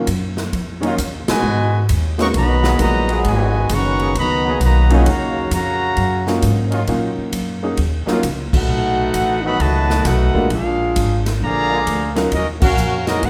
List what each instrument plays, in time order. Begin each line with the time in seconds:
0.07 upright bass F#2, kick, hi-hat pedal, ride
0.37 snare
0.53 upright bass F2, kick, ride
0.81 grand piano D#3 F#3 A#3 C#4 D#4, trombone section D#3 F#3 C#4 F4, ride
0.98 upright bass D#2, kick, hi-hat pedal, ride
1.27 trombone section B2 D#3 G#3, trumpet section F#4 B4 D#5 G#5, muted upright bass stroke, snare, ride
1.43 upright bass G#2
1.89 upright bass D#2, kick, hi-hat pedal, ride
2.18 grand piano G#3 A#3 B3 D#4 F#4, trombone section C#4, trumpet section A#4 D#5 F#5 C#6, snare, ride
2.34 upright bass B1, trombone section D#3 F#3 B3, trumpet section F#4 D#5 A#5 B5, kick, ride
2.62 trombone section F#3 A#3 B3 G#4, snare
2.79 upright bass A#1, trombone section A#2 D#3 F#3, grand piano G#3 A#3 B3 D#4 F#4, trumpet section F#4 B4 D#5 A#5, kick, hi-hat pedal, ride
3.08 trombone section F#3 G#3 B3 G#4, ride
3.25 upright bass G#1, trombone section B2 D#3 G#3, trumpet section F#4 B4 D#5 G#5, kick, ride
3.69 upright bass F#1, trombone section D#3 F#3 C#4, trumpet section B4 F#5 A#5, kick, hi-hat pedal, ride
3.74 trumpet section C#6
3.97 trombone section F#3 A#3 B3 G#4, ride
4.15 upright bass C#2, trombone section D#3 F#3 B3, trumpet section F#4 D#5 B5, kick, ride
4.19 trumpet section A#5
4.45 trombone section F#3 A#3 B3 G#4
4.60 upright bass B1, trombone section F#3, trumpet section B4 D#5, kick, hi-hat pedal, ride
4.64 trombone section D#3 A#3, trumpet section F#4 A#5
4.90 trombone section D#3 F#3 C#4 F#4, grand piano F#3 A#3 C#4 D#4 F4, ride
4.94 trombone section B2 D#3 G#3, trumpet section F#4 B4 D#5 G#5
5.06 upright bass D#2, trumpet section F#4 C#5 F5 A#5, kick, ride
5.10 trombone section C#3 F#3 A#3
5.51 upright bass F2, trumpet section F#4 C#5 F5 A#5, kick, hi-hat pedal, ride
5.56 trombone section C#3 A#3 F#4
5.97 upright bass F#2, kick, ride
6.27 grand piano F#3 A#3 C#4 D#4 F4, snare
6.42 upright bass G#2, kick, hi-hat pedal, ride
6.70 trombone section D#3 F#3 C#4 F4, ride
6.87 upright bass A#2, grand piano F#3 A#3 C#4 D#4 F4, kick, ride
7.18 muted upright bass stroke
7.32 upright bass F#2, kick, hi-hat pedal, ride
7.63 grand piano F#3 A#3 C#4 D#4 G#4
7.77 upright bass D#2, kick, ride
8.05 trombone section D#3 F#3 C#4 F4, grand piano F#3 A#3 C#4 D#4 F4, muted upright bass stroke, snare
8.23 upright bass C#2, kick, hi-hat pedal, ride
8.53 trombone section A3 D#4 F#4, trumpet section D#4 A4 B4 F#5, muted upright bass stroke, kick, crash
8.68 upright bass B1
9.14 upright bass A1, kick, hi-hat pedal, ride
9.43 trombone section D#3 F#3 A3 B3 F#4, trumpet section A4 D#5 F#5 B5
9.59 upright bass C#2, trombone section D#3 F#3 A3, trumpet section F#4 B4 D#5 A5, kick, ride
9.90 snare
10.05 upright bass B1, trombone section A3 D#4 F#4, trumpet section D#4 A4 B4 F#5, kick, snare, hi-hat pedal, ride
10.34 grand piano G#3 A#3 D4 F4 A#4, kick
10.50 upright bass A#1, trombone section G#3 D4 F4, trumpet section D4 G#4 A#4 F5, kick, ride
10.96 upright bass G#1, kick, hi-hat pedal, ride
11.26 snare, ride
11.41 upright bass A#1, trombone section D3 F3 A#3, trumpet section G#4 D5 F5 A#5, kick
11.69 trombone section D3 G#3 A#3 F4
11.87 upright bass D2, kick, hi-hat pedal, ride
12.15 grand piano F#3 C#4 D#4 F4 A#4, snare, ride
12.31 upright bass D#2, trombone section F#3 A#3 D#4, trumpet section C#4 F#4 A#4 D#5, kick, ride
12.61 trombone section A#3 C#4 F#4, trumpet section C#4 F#4 A#4 F5, kick, crash
12.77 upright bass F2, hi-hat pedal
13.07 trombone section F#3 G#3 A#3 B3 D#4 F#4 A#4, trumpet section C#4 F#4 A#4 D#5, snare, ride
13.22 upright bass G#2, trombone section B3 D#4 F#4, trumpet section D#4 A#4 B4 F#5, kick, ride